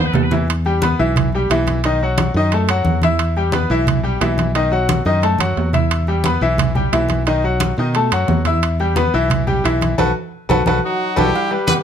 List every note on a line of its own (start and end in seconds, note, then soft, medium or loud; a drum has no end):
0.00 0.13 D#2 medium
0.00 0.25 B3 medium
0.00 0.26 B4 medium
0.05 0.14 B4 medium
0.13 0.93 E2 medium
0.13 0.22 A4 medium
0.13 low conga medium
0.13 low timbale loud
0.22 0.32 B4 medium
0.31 0.45 E3 medium
0.31 0.46 E4 medium
0.31 low conga medium
0.31 low timbale medium
0.48 high conga soft
0.48 high timbale medium
0.65 0.80 G3 medium
0.65 0.80 G4 medium
0.65 0.80 G5 medium
0.65 high conga soft
0.82 0.96 B3 medium
0.82 0.96 B4 medium
0.82 0.97 B5 medium
0.82 high conga loud
0.82 high timbale medium
0.99 1.47 B1 medium
0.99 1.27 E3 medium
0.99 1.27 E4 medium
0.99 1.27 E5 medium
0.99 high conga soft
1.16 high conga soft
1.16 low conga medium
1.16 high timbale medium
1.33 1.48 G3 medium
1.33 1.48 G4 medium
1.33 1.48 G5 medium
1.33 high conga soft
1.50 2.29 B1 medium
1.50 1.78 E3 medium
1.50 1.78 E4 medium
1.50 1.79 E5 medium
1.50 high conga soft
1.50 high timbale medium
1.50 low timbale medium
1.67 high conga medium
1.67 high timbale medium
1.84 1.99 D#3 medium
1.84 1.99 D#4 medium
1.84 1.99 D#5 medium
1.84 high conga soft
1.84 high timbale medium
2.02 2.30 F#3 medium
2.02 2.30 F#4 medium
2.02 2.30 F#5 medium
2.02 high conga soft
2.18 high conga loud
2.18 high timbale medium
2.34 2.82 F#2 medium
2.34 2.50 D#3 medium
2.34 2.50 D#4 medium
2.34 2.50 D#5 medium
2.34 high conga soft
2.51 2.67 A3 medium
2.51 2.67 A4 medium
2.51 2.67 A5 medium
2.51 high conga soft
2.51 high timbale medium
2.68 2.97 F#3 medium
2.68 2.97 F#4 medium
2.68 2.98 F#5 medium
2.68 high conga soft
2.68 high timbale loud
2.85 3.65 E2 medium
2.85 high conga medium
3.02 3.31 E4 medium
3.02 3.31 E5 medium
3.02 3.32 E6 medium
3.02 high conga medium
3.02 high timbale medium
3.19 high conga soft
3.19 high timbale medium
3.36 3.51 G3 medium
3.36 3.51 G4 medium
3.36 3.51 G5 medium
3.36 high conga soft
3.52 3.67 B3 medium
3.52 3.68 B4 medium
3.52 3.68 B5 medium
3.52 high conga loud
3.52 high timbale medium
3.70 4.18 B1 loud
3.70 3.98 E3 medium
3.70 3.99 E4 medium
3.70 3.99 E5 medium
3.70 high conga soft
3.87 high conga soft
3.87 low conga medium
3.87 high timbale loud
4.03 4.18 G3 medium
4.03 4.18 G4 medium
4.03 4.18 G5 medium
4.03 high conga soft
4.21 5.01 B1 medium
4.21 4.49 E3 medium
4.21 4.49 E4 medium
4.21 4.49 E5 medium
4.21 high timbale loud
4.21 low timbale medium
4.38 high conga medium
4.38 high timbale medium
4.55 4.69 D#3 medium
4.55 4.70 D#4 medium
4.55 4.70 D#5 medium
4.55 high conga soft
4.55 high timbale medium
4.72 5.00 F#3 medium
4.72 5.00 F#4 medium
4.72 5.00 F#5 medium
4.72 high conga soft
4.89 high conga loud
4.89 high timbale medium
5.05 5.38 F#2 loud
5.05 5.20 D#3 medium
5.05 5.20 D#4 medium
5.05 5.20 D#5 medium
5.05 high conga soft
5.22 5.37 A3 medium
5.22 5.37 A4 medium
5.22 5.37 A5 medium
5.22 high conga soft
5.22 high timbale medium
5.38 5.56 F#2 medium
5.38 5.68 F#3 medium
5.38 5.68 F#4 medium
5.38 5.69 F#5 medium
5.38 high conga medium
5.38 high timbale loud
5.57 6.37 E2 medium
5.57 low timbale medium
5.73 6.02 E4 medium
5.73 6.02 E5 medium
5.73 6.02 E6 medium
5.73 low conga medium
5.73 high timbale medium
5.91 high conga soft
5.91 high timbale medium
6.07 6.22 G3 medium
6.07 6.22 G4 medium
6.07 6.23 G5 medium
6.07 high conga soft
6.24 6.39 B3 medium
6.24 6.39 B4 medium
6.24 6.40 B5 medium
6.24 high conga loud
6.24 high timbale medium
6.41 6.89 B1 medium
6.41 6.70 E3 medium
6.41 6.70 E4 medium
6.41 6.70 E5 medium
6.41 high conga soft
6.58 high conga soft
6.58 low conga medium
6.58 high timbale loud
6.75 6.89 G3 medium
6.75 6.90 G4 medium
6.75 6.90 G5 medium
6.75 high conga soft
6.75 low conga medium
6.92 7.72 B1 medium
6.92 7.21 E3 medium
6.92 7.21 E4 medium
6.92 7.21 E5 medium
6.92 high conga soft
6.92 high timbale medium
6.92 low timbale medium
7.09 high conga medium
7.09 high timbale medium
7.26 7.41 D#3 medium
7.26 7.41 D#4 medium
7.26 7.41 D#5 medium
7.26 high conga soft
7.26 high timbale medium
7.43 7.72 F#3 medium
7.43 7.72 F#4 medium
7.43 7.72 F#5 medium
7.43 high conga soft
7.60 high conga medium
7.60 high timbale medium
7.77 8.10 B2 loud
7.77 7.93 D#3 medium
7.77 7.93 D#4 medium
7.77 7.93 D#5 medium
7.77 high conga soft
7.94 8.09 A3 medium
7.94 8.09 A4 medium
7.94 8.10 A5 medium
7.94 high conga soft
7.94 high timbale medium
8.11 8.28 F#2 medium
8.11 8.40 F#3 medium
8.11 8.40 F#4 medium
8.11 8.41 F#5 medium
8.11 high conga soft
8.11 high timbale loud
8.28 9.08 E2 medium
8.28 high conga medium
8.28 low timbale medium
8.45 8.74 E4 medium
8.45 8.74 E5 medium
8.45 8.74 E6 medium
8.45 high conga medium
8.45 high timbale medium
8.62 high conga soft
8.62 high timbale medium
8.79 8.94 G3 medium
8.79 8.94 G4 medium
8.79 8.94 G5 medium
8.79 high conga soft
8.96 9.11 B3 medium
8.96 9.11 B4 medium
8.96 9.11 B5 medium
8.96 high conga loud
8.96 high timbale medium
9.14 9.61 B1 medium
9.14 9.42 E3 medium
9.14 9.42 E4 medium
9.14 9.42 E5 medium
9.14 high conga soft
9.30 high conga soft
9.30 low conga medium
9.30 high timbale loud
9.47 9.61 G3 medium
9.47 9.61 G4 medium
9.47 9.62 G5 medium
9.47 high conga soft
9.47 low conga medium
9.64 9.97 B1 medium
9.64 9.92 E3 medium
9.64 9.93 E4 medium
9.64 9.93 E5 medium
9.64 high conga soft
9.64 high timbale medium
9.81 high conga medium
9.81 high timbale medium
9.98 10.11 B1 medium
9.98 10.10 F#4 loud
9.98 10.09 A4 loud
9.98 10.10 B4 medium
9.98 high conga loud
9.98 high timbale loud
10.49 10.62 B1 loud
10.49 10.60 F#4 medium
10.49 10.60 A4 medium
10.49 10.60 B4 loud
10.49 high conga loud
10.49 high timbale loud
10.66 10.79 B1 medium
10.66 10.78 F#4 loud
10.66 10.78 A4 medium
10.66 10.78 B4 medium
10.66 high conga medium
10.66 high timbale medium
10.84 11.16 F#3 medium
10.84 11.16 D#4 medium
10.84 11.16 F#4 medium
11.16 11.31 B1 loud
11.16 11.52 G3 loud
11.16 11.52 E4 medium
11.16 11.28 F#4 loud
11.16 11.52 G4 loud
11.16 11.28 A4 medium
11.16 11.28 B4 loud
11.16 high conga medium
11.16 high timbale medium
11.34 high conga soft
11.34 low agogo loud
11.51 11.79 G3 medium
11.51 11.79 G4 medium
11.51 11.79 B4 medium
11.51 high conga soft
11.67 11.75 B3 medium
11.67 11.77 G4 medium
11.67 11.75 B4 loud
11.67 high conga loud
11.67 low agogo medium